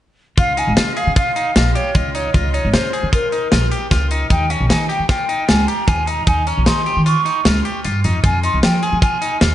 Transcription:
0.37 0.61 C#2 medium
0.37 0.52 F4 medium
0.37 0.60 F5 medium
0.37 kick medium
0.37 closed hi-hat medium
0.57 0.72 D#4 medium
0.57 0.77 G#5 medium
0.57 closed hi-hat medium
0.67 0.75 G#1 medium
0.77 0.93 C#3 medium
0.77 0.92 F4 medium
0.77 0.99 D#5 medium
0.77 snare loud
0.77 closed hi-hat medium
0.97 1.11 G#4 medium
0.97 1.17 F5 medium
0.97 closed hi-hat soft
1.07 1.23 C#3 medium
1.16 1.31 F4 medium
1.16 1.53 F5 medium
1.16 kick medium
1.16 closed hi-hat medium
1.36 1.51 D#4 medium
1.36 closed hi-hat medium
1.56 1.72 A#1 medium
1.56 1.70 F4 medium
1.56 1.77 D#5 medium
1.56 snare medium
1.56 closed hi-hat medium
1.75 1.90 G4 medium
1.75 1.97 C#5 medium
1.75 closed hi-hat medium
1.95 2.26 C#2 medium
1.95 2.09 F4 medium
1.95 2.17 D#5 medium
1.95 kick medium
1.95 closed hi-hat medium
2.15 2.29 D#4 medium
2.15 2.36 C#5 medium
2.15 closed hi-hat medium
2.34 2.58 C#2 medium
2.34 2.49 F4 medium
2.34 2.55 D#5 medium
2.34 kick medium
2.34 closed hi-hat medium
2.54 2.69 D#4 medium
2.54 2.75 C#5 medium
2.54 closed hi-hat soft
2.65 2.72 G#1 medium
2.74 2.90 C#3 medium
2.74 2.88 F4 medium
2.74 3.13 C5 medium
2.74 snare loud
2.74 closed hi-hat medium
2.93 3.08 G#4 medium
2.93 closed hi-hat soft
3.03 3.19 C#3 medium
3.13 3.28 F4 medium
3.13 3.50 A#4 medium
3.13 kick medium
3.13 closed hi-hat medium
3.32 3.47 D#4 medium
3.32 closed hi-hat soft
3.52 3.68 A#1 medium
3.52 3.67 F4 medium
3.52 snare medium
3.52 closed hi-hat medium
3.72 3.86 G4 medium
3.72 closed hi-hat medium
3.91 4.23 C#2 medium
3.91 4.06 F4 medium
3.91 kick medium
3.91 snare soft
3.91 closed hi-hat medium
4.11 4.26 D#4 medium
4.11 closed hi-hat medium
4.30 4.54 D#2 medium
4.30 4.45 D#4 medium
4.30 4.52 G5 medium
4.30 kick medium
4.30 closed hi-hat medium
4.50 4.65 C#4 medium
4.50 4.72 D#5 medium
4.50 closed hi-hat medium
4.61 4.68 A#1 medium
4.70 4.86 D#3 medium
4.70 4.84 D#4 medium
4.70 4.89 G#5 medium
4.70 snare medium
4.70 closed hi-hat medium
4.89 5.04 G4 medium
4.89 5.08 G5 medium
4.89 closed hi-hat soft
5.00 5.15 D#3 medium
5.09 5.24 F4 medium
5.09 5.50 G5 medium
5.09 kick medium
5.09 snare soft
5.09 closed hi-hat medium
5.29 5.43 D#4 medium
5.29 closed hi-hat soft
5.48 5.65 C#2 medium
5.48 5.63 F4 medium
5.48 5.69 G#5 medium
5.48 snare medium
5.48 closed hi-hat medium
5.68 5.83 G4 medium
5.68 5.90 A#5 medium
5.68 closed hi-hat medium
5.87 6.19 D#2 medium
5.87 6.02 F4 medium
5.87 6.09 G#5 medium
5.87 kick medium
5.87 closed hi-hat medium
6.07 6.22 D#4 medium
6.07 6.27 A#5 medium
6.07 closed hi-hat medium
6.27 6.51 D#2 medium
6.27 6.42 D#4 medium
6.27 6.49 G#5 medium
6.27 kick medium
6.27 closed hi-hat medium
6.47 6.62 C#4 medium
6.47 6.68 A#5 medium
6.47 closed hi-hat soft
6.58 6.65 A#1 medium
6.66 6.83 D#3 medium
6.66 6.81 D#4 medium
6.66 7.05 C6 medium
6.66 snare medium
6.66 closed hi-hat medium
6.86 7.01 G4 medium
6.86 closed hi-hat soft
6.97 7.12 D#3 medium
7.06 7.21 F4 medium
7.06 7.42 C#6 medium
7.06 closed hi-hat medium
7.25 7.40 D#4 medium
7.25 closed hi-hat soft
7.45 7.61 C#2 medium
7.45 7.60 F4 medium
7.45 snare medium
7.45 closed hi-hat medium
7.65 7.80 G4 medium
7.65 closed hi-hat soft
7.85 8.02 G2 medium
7.85 7.99 F4 medium
7.85 closed hi-hat medium
8.04 8.22 F2 medium
8.04 8.19 D#4 medium
8.04 closed hi-hat medium
8.24 8.47 F2 medium
8.24 8.38 F4 medium
8.24 8.43 G#5 medium
8.24 kick medium
8.24 closed hi-hat medium
8.43 8.58 D#4 medium
8.43 8.62 C6 medium
8.43 closed hi-hat medium
8.54 8.61 C2 medium
8.63 8.79 F3 medium
8.63 8.78 F4 medium
8.63 8.84 G5 medium
8.63 snare loud
8.63 closed hi-hat medium
8.83 8.97 G#4 medium
8.83 9.02 G#5 medium
8.83 closed hi-hat soft
8.93 9.08 F3 medium
9.02 9.17 F4 medium
9.02 9.39 G#5 medium
9.02 kick medium
9.02 closed hi-hat medium
9.22 9.36 D#4 medium
9.22 closed hi-hat medium
9.41 9.55 D#2 medium
9.41 9.55 F4 medium
9.41 snare loud
9.41 closed hi-hat medium

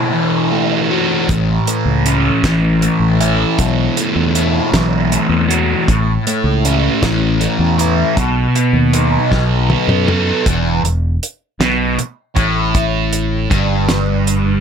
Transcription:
0.00 0.90 B2 medium
0.00 0.13 E3 medium
0.00 0.50 A3 medium
0.00 2.05 E4 medium
0.13 2.44 E3 medium
0.51 1.67 A3 medium
0.90 1.29 F#4 medium
1.29 1.58 A1 loud
1.29 3.20 A2 medium
1.29 kick loud
1.29 closed hi-hat medium
1.67 2.82 A3 medium
1.67 closed hi-hat medium
1.85 2.29 C#2 medium
2.05 3.58 C#4 medium
2.05 closed hi-hat medium
2.43 2.87 A1 loud
2.43 4.72 E3 medium
2.43 kick medium
2.43 snare loud
2.43 closed hi-hat medium
2.82 3.62 A3 medium
2.82 closed hi-hat medium
3.00 3.44 A1 medium
3.20 4.35 E4 medium
3.20 closed hi-hat medium
3.59 3.87 B1 loud
3.59 5.50 B2 medium
3.59 kick loud
3.59 closed hi-hat medium
3.97 5.11 A3 medium
3.97 closed hi-hat medium
4.16 4.59 E2 medium
4.35 5.88 E4 medium
4.35 closed hi-hat medium
4.72 5.16 B1 loud
4.72 5.88 E3 medium
4.72 kick medium
4.72 snare loud
4.72 closed hi-hat medium
5.11 6.26 A3 medium
5.11 closed hi-hat medium
5.29 5.73 E2 medium
5.49 5.88 F#4 medium
5.49 closed hi-hat medium
5.88 6.17 A1 loud
5.88 7.79 A2 medium
5.88 kick loud
5.88 closed hi-hat medium
6.26 7.39 A3 medium
6.26 closed hi-hat medium
6.44 6.88 C#2 medium
6.65 8.17 C#4 medium
6.65 closed hi-hat medium
7.02 7.45 A1 medium
7.02 8.17 E3 medium
7.02 kick medium
7.02 snare loud
7.02 closed hi-hat medium
7.40 8.17 A3 medium
7.40 closed hi-hat medium
7.59 8.02 E2 medium
7.78 8.17 E4 medium
7.78 closed hi-hat medium
8.17 8.46 B1 loud
8.17 10.07 B2 medium
8.17 kick loud
8.17 closed hi-hat medium
8.55 9.69 B3 medium
8.55 closed hi-hat medium
8.73 9.17 D#2 medium
8.93 10.46 D#4 medium
8.93 closed hi-hat medium
9.31 9.74 B1 loud
9.31 10.46 F#3 medium
9.31 kick medium
9.31 snare medium
9.70 10.46 B3 medium
9.70 high tom medium
9.88 10.31 F#2 medium
9.88 mid tom medium
10.07 10.46 A4 medium
10.07 mid tom medium
10.46 10.81 E1 medium
10.46 10.83 E2 loud
10.46 kick loud
10.46 closed hi-hat medium
10.83 11.19 E1 medium
10.83 11.14 E2 medium
10.83 closed hi-hat medium
11.23 closed hi-hat medium
11.60 11.95 B1 medium
11.60 11.97 B2 medium
11.60 snare loud
11.60 closed hi-hat medium
11.97 muted fingered electric bass stroke soft
11.97 muted distorted electric guitar stroke medium
11.97 closed hi-hat medium
12.35 13.46 A1 medium
12.35 13.49 A2 medium
12.35 kick loud
12.35 closed hi-hat medium
12.75 kick loud
12.75 closed hi-hat medium
13.13 closed hi-hat medium
13.50 14.60 G1 medium
13.50 14.60 G2 medium
13.50 kick medium
13.50 closed hi-hat medium
13.89 snare loud
13.89 closed hi-hat medium
14.27 closed hi-hat medium

